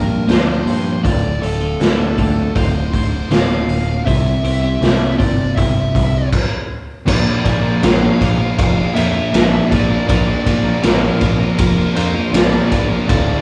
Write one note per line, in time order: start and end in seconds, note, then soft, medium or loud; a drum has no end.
0.00 0.23 G2 medium
0.00 0.26 A#2 medium
0.00 0.26 F3 medium
0.00 0.26 A#3 medium
0.00 0.26 A#4 medium
0.27 0.61 D2 medium
0.27 1.01 A#2 medium
0.27 1.02 F3 medium
0.27 0.53 A#3 medium
0.27 0.53 D4 medium
0.27 0.53 F4 medium
0.27 0.53 A#4 medium
0.27 1.00 C5 medium
0.27 snare loud
0.27 open hi-hat medium
0.66 0.99 G2 medium
0.66 open hi-hat medium
1.02 1.37 D1 loud
1.02 2.90 D2 medium
1.02 2.91 A2 medium
1.02 1.28 D3 medium
1.02 1.28 A3 loud
1.02 1.29 C4 medium
1.02 1.29 F4 loud
1.02 1.39 D5 loud
1.02 kick loud
1.02 open hi-hat medium
1.42 1.75 D1 medium
1.42 1.61 D3 medium
1.42 1.61 A3 medium
1.42 1.60 C4 medium
1.42 1.60 F4 medium
1.42 2.55 A4 medium
1.42 open hi-hat medium
1.61 1.79 D3 medium
1.61 1.79 A3 medium
1.61 1.79 C4 medium
1.61 1.79 F4 loud
1.80 2.12 D2 medium
1.80 muted clean electric guitar stroke soft
1.80 snare loud
1.80 open hi-hat medium
2.18 2.50 D2 medium
2.18 2.42 D3 medium
2.18 2.42 A3 medium
2.18 2.42 C4 medium
2.18 2.43 F4 medium
2.18 kick medium
2.18 open hi-hat medium
2.55 3.21 D1 medium
2.55 2.80 D3 medium
2.55 2.80 A3 loud
2.55 2.80 C4 medium
2.55 2.80 F4 medium
2.55 2.92 C5 medium
2.55 kick loud
2.55 open hi-hat medium
2.91 3.29 D2 medium
2.91 3.28 A2 medium
2.91 3.28 D3 medium
2.91 3.32 C5 medium
2.91 kick medium
2.91 open hi-hat medium
3.30 3.63 D1 medium
3.30 4.03 D2 medium
3.30 4.04 A2 medium
3.30 3.55 D3 medium
3.30 3.55 A3 medium
3.30 3.55 C4 medium
3.30 3.56 F4 medium
3.30 4.03 F5 medium
3.30 snare loud
3.30 open hi-hat medium
3.68 4.01 D1 medium
3.68 open hi-hat medium
4.05 4.39 C2 loud
4.05 5.93 C3 medium
4.05 5.93 G3 medium
4.05 4.31 C4 medium
4.05 4.31 E4 medium
4.05 4.31 G4 medium
4.05 4.31 C5 medium
4.05 4.61 E5 medium
4.05 kick loud
4.05 open hi-hat medium
4.43 4.76 C2 medium
4.43 4.63 C4 medium
4.43 4.62 E4 medium
4.43 4.62 G4 medium
4.43 4.62 C5 medium
4.43 open hi-hat medium
4.62 4.81 C4 medium
4.62 4.81 E4 medium
4.62 4.81 G4 medium
4.62 4.81 C5 loud
4.62 5.15 E5 medium
4.81 5.14 C2 medium
4.81 muted clean electric guitar stroke soft
4.81 snare loud
4.81 open hi-hat medium
5.18 5.52 G1 medium
5.18 5.43 C4 medium
5.18 5.43 E4 medium
5.18 5.44 G4 medium
5.18 5.44 C5 medium
5.18 5.54 D5 medium
5.18 kick medium
5.18 open hi-hat medium
5.56 5.89 G1 medium
5.56 5.81 C4 medium
5.56 5.82 E4 loud
5.56 5.82 G4 loud
5.56 5.82 C5 loud
5.56 6.28 E5 medium
5.56 kick loud
5.56 open hi-hat medium
5.94 6.27 C2 medium
5.94 6.31 C3 medium
5.94 6.30 G3 medium
5.94 6.30 C4 medium
5.94 kick medium
5.94 open hi-hat medium
6.32 kick loud
6.32 crash medium
7.07 7.32 A#1 loud
7.07 7.82 A#2 medium
7.07 7.82 F3 medium
7.07 7.44 A#3 loud
7.07 7.45 D4 loud
7.07 7.45 F4 loud
7.07 7.46 A#4 medium
7.07 7.43 D5 medium
7.07 kick loud
7.07 crash loud
7.44 7.70 A#1 medium
7.44 7.83 A#3 medium
7.44 7.83 D4 medium
7.44 7.83 F4 medium
7.44 7.84 A#4 medium
7.44 7.80 D5 medium
7.44 kick medium
7.44 ride medium
7.63 7.83 A#3 medium
7.63 7.83 D4 medium
7.63 7.84 F4 medium
7.63 7.85 A#4 medium
7.82 8.08 A#1 loud
7.82 9.33 A#2 medium
7.82 9.33 F3 loud
7.82 8.03 A#3 medium
7.82 8.02 D4 loud
7.82 8.01 F4 medium
7.82 8.01 A#4 loud
7.82 8.54 F5 medium
7.82 snare loud
7.82 ride medium
8.01 8.19 A#3 medium
8.01 8.20 D4 medium
8.01 8.20 F4 medium
8.01 8.21 A#4 medium
8.19 8.45 A#1 medium
8.19 8.40 A#3 medium
8.19 8.40 D4 medium
8.19 8.39 F4 medium
8.19 8.38 A#4 medium
8.19 muted distorted electric guitar stroke soft
8.19 kick medium
8.19 ride medium
8.39 8.77 A#3 medium
8.39 8.78 D4 medium
8.39 8.77 F4 medium
8.39 8.75 A#4 medium
8.39 muted distorted electric guitar stroke medium
8.59 8.83 F1 medium
8.59 8.94 F5 medium
8.59 kick loud
8.59 ride loud
8.77 8.95 A#3 medium
8.77 8.96 D4 medium
8.77 8.97 F4 medium
8.77 8.96 A#4 medium
8.95 9.21 F2 medium
8.95 9.15 A#3 medium
8.95 9.16 D4 medium
8.95 9.15 F4 medium
8.95 9.13 A#4 medium
8.95 9.69 E5 medium
8.95 ride medium
9.13 9.33 A#3 medium
9.13 9.34 D4 medium
9.13 9.34 F4 medium
9.13 9.34 A#4 medium
9.13 muted distorted electric guitar stroke medium
9.33 9.58 A#1 medium
9.33 10.07 A#2 medium
9.33 10.08 F3 medium
9.33 9.70 A#3 medium
9.33 9.71 D4 medium
9.33 9.72 F4 medium
9.33 9.72 A#4 medium
9.33 snare loud
9.33 ride loud
9.51 9.69 A#3 medium
9.51 9.70 D4 medium
9.51 9.71 F4 medium
9.51 9.71 A#4 medium
9.69 9.96 A#1 medium
9.69 9.91 A#3 medium
9.69 9.91 D4 medium
9.69 9.90 F4 medium
9.69 9.89 A#4 medium
9.69 10.05 D5 medium
9.69 kick medium
9.69 ride medium
9.90 10.08 A#3 medium
9.90 10.09 D4 medium
9.90 10.09 F4 medium
9.90 10.09 A#4 medium
10.08 10.33 A#1 loud
10.08 10.81 A#2 loud
10.08 10.83 F3 loud
10.08 10.45 A#3 medium
10.08 10.46 D4 medium
10.08 10.47 F4 medium
10.08 10.47 A#4 loud
10.08 10.85 D5 medium
10.08 kick loud
10.08 ride loud
10.46 10.71 A#1 medium
10.46 10.82 A#3 medium
10.46 10.83 D4 medium
10.46 10.84 F4 medium
10.46 10.84 A#4 medium
10.46 kick medium
10.46 ride medium
10.64 10.83 A#3 medium
10.64 10.85 D4 medium
10.64 10.85 F4 medium
10.64 10.85 A#4 medium
10.82 11.08 A#1 medium
10.82 11.39 A#2 loud
10.82 12.33 F3 medium
10.82 11.03 A#3 loud
10.82 11.03 D4 loud
10.82 11.02 F4 loud
10.82 11.56 A#4 medium
10.82 11.01 A#4 loud
10.82 snare loud
10.82 ride loud
11.02 11.20 A#3 medium
11.02 11.21 D4 medium
11.02 11.22 F4 medium
11.02 11.22 A#4 medium
11.21 11.46 A#1 medium
11.21 11.40 A#3 medium
11.21 11.40 D4 medium
11.21 11.39 F4 medium
11.21 11.39 A#4 medium
11.21 muted distorted electric guitar stroke soft
11.21 kick medium
11.21 ride medium
11.39 11.78 A#3 medium
11.39 11.78 D4 medium
11.39 11.77 F4 medium
11.39 11.76 A#4 medium
11.39 muted distorted electric guitar stroke medium
11.57 11.83 F1 loud
11.57 11.92 A#4 medium
11.57 kick loud
11.57 ride loud
11.77 11.95 A#3 medium
11.77 11.96 D4 medium
11.77 11.96 F4 medium
11.77 11.97 A#4 medium
11.95 12.21 F2 medium
11.95 12.15 A#3 medium
11.95 12.15 D4 medium
11.95 12.14 F4 medium
11.95 12.13 A#4 medium
11.95 12.30 C5 medium
11.95 ride medium
12.14 12.33 A#3 medium
12.14 12.33 D4 medium
12.14 12.34 F4 medium
12.14 12.34 A#4 medium
12.14 muted distorted electric guitar stroke medium
12.33 12.58 A#1 medium
12.33 13.06 A#2 medium
12.33 13.06 F3 medium
12.33 12.70 A#3 medium
12.33 12.71 D4 loud
12.33 12.71 F4 loud
12.33 12.72 A#4 loud
12.33 12.86 D5 medium
12.33 snare loud
12.33 ride loud
12.51 12.69 A#3 medium
12.51 12.70 D4 medium
12.51 12.70 F4 medium
12.51 12.71 A#4 medium
12.71 12.96 A#1 medium
12.71 12.90 A#3 medium
12.71 12.90 D4 medium
12.71 12.89 F4 medium
12.71 12.88 A#4 medium
12.71 kick medium
12.71 ride medium
12.89 13.07 A#3 medium
12.89 13.07 D4 medium
12.89 13.06 F4 medium
12.89 13.06 A#4 medium
13.07 13.33 D1 loud
13.07 13.41 D2 loud
13.07 13.41 A2 loud
13.07 13.41 D3 loud
13.07 13.41 A3 loud
13.07 13.41 C4 loud
13.07 13.41 F4 loud
13.07 13.41 D5 medium
13.07 kick loud
13.07 ride medium